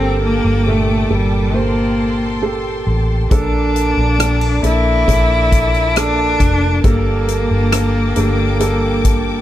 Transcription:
0.00 0.40 G1 medium
0.00 1.07 G2 medium
0.00 0.62 A#3 medium
0.00 0.19 C4 medium
0.00 0.62 G4 medium
0.00 0.62 A4 loud
0.00 3.28 A4 medium
0.00 3.27 G5 medium
0.00 3.28 A5 medium
0.00 1.53 D6 medium
0.23 0.69 A#3 medium
0.44 1.07 G1 medium
0.66 1.08 A#2 soft
0.66 1.15 A3 medium
0.66 1.08 G4 soft
0.66 1.08 A4 medium
1.10 2.83 G1 medium
1.10 1.58 G3 medium
1.10 1.52 A#3 medium
1.10 1.52 G4 soft
1.10 1.52 A4 medium
1.54 2.38 A#3 medium
1.54 2.44 A#3 medium
1.54 2.38 G4 medium
1.54 2.38 C5 medium
1.54 3.29 C6 medium
2.42 3.26 A#3 medium
2.42 3.26 G4 medium
2.42 3.27 A4 medium
2.87 3.28 A1 medium
3.31 3.93 A#1 medium
3.31 6.84 A#2 medium
3.31 4.60 A#2 medium
3.31 9.41 A#3 medium
3.31 4.15 A#3 medium
3.31 4.15 D4 medium
3.31 4.60 D4 medium
3.31 4.15 A4 loud
3.31 6.80 D5 medium
3.31 9.41 A5 medium
3.31 6.80 D6 medium
3.31 kick loud
3.31 closed hi-hat medium
3.76 5.95 A#3 medium
3.76 closed hi-hat medium
3.97 4.59 A#1 medium
4.19 4.61 A#3 medium
4.19 4.61 D4 medium
4.19 4.41 G4 medium
4.19 4.61 A4 medium
4.19 cross-stick loud
4.19 closed hi-hat medium
4.41 5.51 A4 soft
4.63 5.04 A#1 medium
4.63 5.05 A#3 medium
4.63 5.05 D4 soft
4.63 6.40 D4 medium
4.63 5.98 E4 medium
4.63 5.05 A4 medium
4.63 closed hi-hat medium
5.07 6.36 A#1 medium
5.07 6.93 F3 medium
5.07 5.91 A#3 medium
5.07 5.91 D4 medium
5.07 5.91 A4 medium
5.07 kick medium
5.07 closed hi-hat medium
5.52 7.31 A4 medium
5.52 kick medium
5.52 closed hi-hat medium
5.74 closed hi-hat soft
5.96 7.28 A#3 soft
5.96 6.80 A#3 medium
5.96 6.84 D4 loud
5.96 6.80 D4 medium
5.96 6.80 A4 medium
5.96 cross-stick medium
5.96 closed hi-hat medium
6.40 6.81 F1 medium
6.40 8.16 D4 medium
6.40 kick medium
6.40 closed hi-hat medium
6.84 7.46 G1 medium
6.84 9.41 G2 medium
6.84 8.12 G2 medium
6.84 7.68 A#3 medium
6.84 9.41 A#3 medium
6.84 7.68 G4 medium
6.84 7.68 A4 medium
6.84 9.41 G5 medium
6.84 9.41 D6 medium
6.84 kick loud
6.84 closed hi-hat medium
7.28 9.41 A#3 medium
7.28 closed hi-hat medium
7.51 8.13 G1 medium
7.72 8.14 A#3 medium
7.72 8.14 G4 soft
7.72 9.04 A4 medium
7.72 8.14 A#4 medium
7.72 cross-stick loud
7.72 closed hi-hat loud
8.16 9.41 G1 medium
8.16 8.58 A#3 medium
8.16 9.41 D4 medium
8.16 8.58 G4 medium
8.16 8.58 A4 medium
8.16 closed hi-hat medium
8.60 9.41 G3 medium
8.60 9.41 A#3 medium
8.60 9.41 G4 medium
8.60 9.41 A4 medium
8.60 closed hi-hat medium
9.04 9.41 A4 medium
9.04 kick medium
9.04 closed hi-hat medium

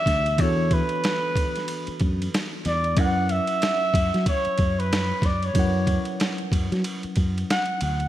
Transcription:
0.00 0.34 E3 medium
0.00 0.35 B3 medium
0.00 0.36 D4 medium
0.00 0.36 F#4 medium
0.00 0.37 G4 medium
0.00 0.42 E5 loud
0.06 0.39 D2 medium
0.06 kick medium
0.06 snare soft
0.06 ride medium
0.26 ride soft
0.37 0.81 E2 loud
0.37 2.92 E3 medium
0.37 2.93 B3 medium
0.37 2.94 D4 medium
0.37 0.75 C#5 loud
0.37 kick loud
0.37 ride medium
0.42 2.94 F#4 medium
0.42 2.95 A4 medium
0.71 2.01 B4 loud
0.71 kick loud
0.71 ride medium
0.89 ride soft
1.04 snare loud
1.04 ride medium
1.36 kick loud
1.36 ride medium
1.56 snare soft
1.56 ride soft
1.68 ride medium
1.87 muted fingered electric bass stroke soft
1.87 ride soft
2.00 2.27 F#2 loud
2.00 kick medium
2.00 ride medium
2.22 ride soft
2.34 snare loud
2.34 ride medium
2.65 2.97 E2 medium
2.65 3.01 D5 loud
2.65 snare soft
2.65 ride medium
2.84 ride soft
2.95 3.39 F#2 loud
2.95 5.50 F#3 medium
2.95 5.51 C#4 medium
2.95 5.52 E4 medium
2.95 3.32 F#5 loud
2.95 kick loud
2.95 ride medium
2.99 3.06 A#4 medium
2.99 5.53 F#5 medium
3.06 5.56 B4 medium
3.29 4.27 E5 loud
3.29 ride medium
3.47 ride soft
3.62 snare loud
3.62 ride medium
3.94 4.10 F#2 loud
3.94 kick loud
3.94 ride medium
4.14 4.24 F#3 loud
4.14 snare soft
4.14 ride soft
4.26 4.81 C#5 loud
4.26 kick medium
4.26 ride medium
4.45 muted fingered electric bass stroke soft
4.45 ride soft
4.58 5.11 F#2 medium
4.58 kick medium
4.58 ride medium
4.80 5.27 B4 medium
4.80 ride soft
4.93 snare loud
4.93 ride medium
5.22 5.49 F#2 loud
5.22 5.46 D5 medium
5.22 kick loud
5.22 snare soft
5.22 ride medium
5.43 6.08 C#5 loud
5.43 ride soft
5.54 5.97 F#2 loud
5.54 8.08 F#3 medium
5.54 8.08 C#4 medium
5.54 8.08 E4 medium
5.54 kick loud
5.54 ride medium
5.58 5.64 A#4 soft
5.58 8.08 F#5 medium
5.64 8.08 B4 medium
5.87 kick medium
5.87 ride medium
6.05 ride soft
6.20 snare loud
6.20 ride medium
6.38 ride soft
6.52 6.68 F#2 medium
6.52 kick medium
6.52 ride medium
6.72 6.82 F#3 loud
6.72 snare soft
6.72 ride soft
6.84 ride medium
7.03 muted fingered electric bass stroke soft
7.03 ride soft
7.16 7.43 F#2 loud
7.16 kick medium
7.16 ride medium
7.38 ride soft
7.50 7.80 F#5 loud
7.50 snare loud
7.50 ride medium
7.66 ride soft
7.81 8.08 D2 medium
7.81 8.08 F#5 medium
7.81 ride medium
8.00 ride soft

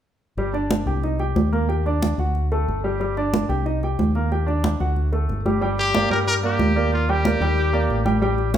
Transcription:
0.37 0.83 G1 medium
0.37 0.52 G3 medium
0.37 0.51 G4 medium
0.37 high conga soft
0.53 0.81 D4 medium
0.53 0.81 D5 medium
0.53 high conga soft
0.71 high conga medium
0.86 1.32 C2 loud
0.86 1.00 G4 medium
0.86 1.01 G5 medium
0.86 high conga soft
1.03 1.17 D#4 medium
1.03 1.17 D#5 medium
1.03 high conga soft
1.19 1.47 G4 medium
1.19 1.47 G5 medium
1.19 high conga soft
1.35 2.12 D#2 medium
1.35 high conga medium
1.52 1.66 A#3 medium
1.52 1.66 A#4 medium
1.52 high conga soft
1.69 1.82 G4 medium
1.69 1.82 G5 medium
1.69 high conga soft
1.86 2.13 D4 medium
1.86 2.13 D5 medium
1.86 high conga soft
2.03 high conga medium
2.18 2.64 D2 medium
2.18 2.46 F#4 medium
2.18 2.46 F#5 medium
2.18 high conga soft
2.35 high conga soft
2.52 2.78 A3 medium
2.52 2.79 A4 medium
2.52 high conga soft
2.68 3.44 G1 medium
2.68 high conga soft
2.84 2.97 G3 medium
2.84 2.98 G4 medium
3.00 3.14 G3 medium
3.00 3.14 G4 medium
3.00 high conga soft
3.17 3.44 D4 medium
3.17 3.44 D5 medium
3.17 high conga soft
3.34 high conga medium
3.49 3.95 C2 loud
3.49 3.63 G4 medium
3.49 3.63 G5 medium
3.49 high conga soft
3.66 3.79 D#4 medium
3.66 3.79 D#5 medium
3.66 high conga soft
3.83 4.10 G4 medium
3.83 4.10 G5 medium
3.83 high conga soft
3.99 4.75 D#2 medium
3.99 high conga medium
4.15 4.28 A#3 medium
4.15 4.29 A#4 medium
4.15 high conga soft
4.32 4.45 G4 medium
4.32 4.45 G5 medium
4.32 high conga soft
4.47 4.74 D4 medium
4.47 4.74 D5 medium
4.47 high conga soft
4.64 high conga medium
4.80 5.26 D2 medium
4.80 5.07 F#4 medium
4.80 5.07 F#5 medium
4.80 high conga soft
4.96 high conga soft
5.12 5.39 A3 medium
5.12 5.40 A4 medium
5.12 high conga soft
5.29 6.05 G1 medium
5.29 high conga soft
5.45 5.59 G3 medium
5.45 5.59 G4 medium
5.45 high conga medium
5.61 5.88 G3 medium
5.61 5.88 G4 medium
5.61 5.89 G5 medium
5.61 high conga soft
5.78 6.09 G4 loud
5.78 high conga soft
5.94 6.07 A#3 medium
5.94 6.08 A#4 medium
5.94 6.08 D5 medium
5.94 high conga medium
6.10 6.56 G2 loud
6.10 6.37 G3 medium
6.10 6.37 G4 medium
6.10 6.18 A#4 medium
6.10 6.37 G5 medium
6.10 high conga soft
6.27 6.35 A#4 loud
6.27 high conga soft
6.43 6.70 A#3 medium
6.43 6.90 G4 medium
6.43 6.70 A#4 medium
6.43 6.70 D5 medium
6.43 high conga soft
6.59 7.35 D#2 medium
6.59 high conga medium
6.76 7.03 A#3 medium
6.76 7.03 A#4 medium
6.76 7.03 D5 medium
6.76 high conga soft
6.92 7.12 F4 medium
6.92 high conga soft
7.09 7.22 G3 medium
7.09 7.22 G4 medium
7.09 8.07 G4 medium
7.09 7.22 G5 medium
7.09 high conga soft
7.25 7.38 A#3 medium
7.25 7.39 A#4 medium
7.25 7.39 D5 medium
7.25 high conga medium
7.40 7.86 D#2 loud
7.40 7.68 G3 medium
7.40 7.68 G4 medium
7.40 7.68 G5 medium
7.40 high conga soft
7.58 high conga soft
7.73 8.00 A#3 medium
7.73 8.00 A#4 medium
7.73 8.00 D5 medium
7.73 high conga soft
7.89 8.58 A1 medium
7.89 high conga soft
8.05 8.19 G3 medium
8.05 8.19 G4 medium
8.05 8.19 G5 medium
8.05 high conga medium
8.22 8.48 G3 medium
8.22 8.49 G4 medium
8.22 8.49 G5 medium
8.22 high conga soft
8.38 high conga soft
8.54 8.58 C#4 medium
8.54 high conga medium

